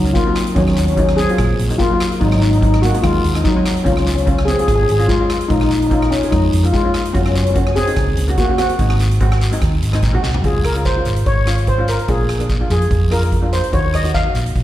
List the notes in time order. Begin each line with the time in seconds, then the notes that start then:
Already playing: C#2 F#3 D#4
0.04 F#3 A#3 C#4, closed hi-hat
0.13 A#3 F4, kick, closed hi-hat, short guiro
0.25 F#3 A#3 C4
0.35 cross-stick, closed hi-hat, short guiro
0.47 closed hi-hat
0.55 D#2 F#3 A#3 C#4 D#4, kick, closed hi-hat, long guiro
0.63 C#4
0.68 C#4, cross-stick
0.77 C#4, closed hi-hat, short guiro
0.86 C#4, closed hi-hat
0.93 F#3 C#4
0.97 A#3 C#4 D#4, kick, closed hi-hat
1.09 cross-stick
1.17 C4 G#4, closed hi-hat, short guiro
1.28 F#3 A#3 F4, closed hi-hat
1.38 A#1, kick, cross-stick, closed hi-hat, long guiro
1.59 A#1, closed hi-hat
1.69 F#3 A#3 D#4, closed hi-hat
1.78 A#3 F4, kick, closed hi-hat, short guiro
1.90 F#3 A#3 F4
2.00 cross-stick, closed hi-hat, short guiro
2.12 closed hi-hat
2.20 G#1 F#3 G#3 C4 D#4, kick, closed hi-hat, long guiro
2.28 D#4, cross-stick
2.35 D#4
2.42 D#4, closed hi-hat, short guiro
2.51 D#4, closed hi-hat
2.58 G#3 D#4
2.62 C4 D#4, kick, closed hi-hat
2.74 cross-stick
2.82 A#3 F#4, closed hi-hat, short guiro
2.93 G#3 C4 D#4, closed hi-hat
3.02 D#2 G#3 F4, kick, cross-stick, closed hi-hat, long guiro
3.24 D#2, closed hi-hat
3.34 G#3 C4 D#4, cross-stick, closed hi-hat
3.44 F#3 D#4, kick, closed hi-hat, short guiro
3.55 G#3 C4 D#4
3.66 cross-stick, closed hi-hat, short guiro
3.77 closed hi-hat
3.84 C#2 G#3 C#4 F4, kick, closed hi-hat, long guiro
3.93 C#4
3.97 C#4, cross-stick
4.06 C#4, closed hi-hat, short guiro
4.15 C#4, closed hi-hat
4.22 G#3 C#4
4.27 C#4 F4, kick, closed hi-hat
4.39 cross-stick
4.45 C4 G#4, closed hi-hat, short guiro
4.53 G#4
4.57 G#3 C#4 F4 G#4, closed hi-hat
4.68 G#1 G#4, kick, cross-stick, closed hi-hat, long guiro
4.75 G#4
4.83 G#4
4.89 G#1 G#4, closed hi-hat
4.97 G#3 C#4 F4, closed hi-hat
5.08 G#3 F4, kick, closed hi-hat, short guiro
5.18 G#3 C#4 F4
5.30 cross-stick, closed hi-hat, short guiro
5.41 closed hi-hat
5.48 A#1 G#3 A#3 C#4 D#4 F4, kick, closed hi-hat, long guiro
5.56 D#4
5.61 D#4, cross-stick
5.71 D#4, closed hi-hat, short guiro
5.79 D#4, closed hi-hat
5.87 A#3 D#4
5.91 C#4 D#4 F4, kick, closed hi-hat
6.02 cross-stick
6.11 C#4 F4, closed hi-hat, short guiro
6.22 A#3 C#4 G#4, closed hi-hat
6.31 F2 G#3 D#4, kick, cross-stick, closed hi-hat, long guiro
6.53 F2, closed hi-hat
6.63 A#3 C#4 F4, closed hi-hat
6.72 G#3 F4, kick, closed hi-hat, short guiro
6.83 A#3 C#4 F4
6.94 cross-stick, closed hi-hat, short guiro
7.05 closed hi-hat
7.13 F#1 A#3 C#4 F4 F#4, kick, closed hi-hat, long guiro
7.22 C#4
7.26 C#4, cross-stick
7.35 C#4, closed hi-hat, short guiro
7.43 C#4, closed hi-hat
7.51 A#3 C#4
7.55 C#4 F#4, kick, closed hi-hat
7.67 cross-stick
7.76 C4 G#4, closed hi-hat, short guiro
7.86 A#3 C#4 D#4, closed hi-hat
7.96 C#2, kick, cross-stick, closed hi-hat, long guiro
8.17 C#2, closed hi-hat
8.27 A#3 C#4 F#4, closed hi-hat
8.38 A#3 F#4, kick, closed hi-hat, short guiro
8.48 A#3 C#4 F#4
8.58 C4 F#4, cross-stick, closed hi-hat, short guiro
8.69 closed hi-hat
8.79 G#1 G#3 C4 D#4, kick, closed hi-hat, long guiro
8.90 cross-stick
9.00 closed hi-hat, short guiro
9.11 closed hi-hat
9.20 G#3 C4 F#4, kick, closed hi-hat
9.32 cross-stick
9.41 closed hi-hat, short guiro
9.51 G#3 C4 D#4, closed hi-hat
9.61 D#2, kick, cross-stick, closed hi-hat, long guiro
9.82 G#1, closed hi-hat
9.92 G#3 C4 D#4, cross-stick, closed hi-hat
10.03 A#1, kick, closed hi-hat, short guiro
10.13 G#3 C4 F#4
10.23 C2, snare, short guiro
10.34 floor tom
10.43 C#2 G#3 C#4 F4 G#4, kick, closed hi-hat, long guiro
10.64 A#4, cross-stick, closed hi-hat
10.74 G#3 C#4 F4, closed hi-hat
10.85 C5, kick, closed hi-hat, short guiro
10.96 G#3 C#4 F4
11.05 G#1, closed hi-hat, short guiro
11.16 closed hi-hat
11.26 G#1 C#5, kick, closed hi-hat, long guiro
11.45 G#3 C#4 F4, cross-stick, closed hi-hat, short guiro
11.58 closed hi-hat
11.67 C5, kick, closed hi-hat
11.78 G#3 C#4 F4
11.88 A#4, closed hi-hat, short guiro
11.99 closed hi-hat
12.08 A#1 A#3 D4 F4 G#4, kick, closed hi-hat, long guiro
12.29 cross-stick, closed hi-hat
12.39 A#3 D4 G#4, closed hi-hat
12.49 kick, closed hi-hat, short guiro
12.60 A#3 D4 F4
12.70 F2 G#4, closed hi-hat, short guiro
12.82 closed hi-hat
12.91 F2, kick, closed hi-hat, long guiro
13.10 A#3 D4 F4 A#4, cross-stick, closed hi-hat
13.23 closed hi-hat
13.32 kick, closed hi-hat
13.42 A#3 D4 F4
13.53 C5, closed hi-hat, short guiro
13.64 closed hi-hat
13.72 D#2 A#3 D#4 F#4 C#5, kick, closed hi-hat, long guiro
13.94 D#5, cross-stick, closed hi-hat
14.03 A#3 D#4 F#4, closed hi-hat
14.14 F5, kick, closed hi-hat, short guiro
14.24 A#3 D#4 F#4
14.34 A#1, closed hi-hat, short guiro
14.46 closed hi-hat
14.56 A#1, kick, closed hi-hat, long guiro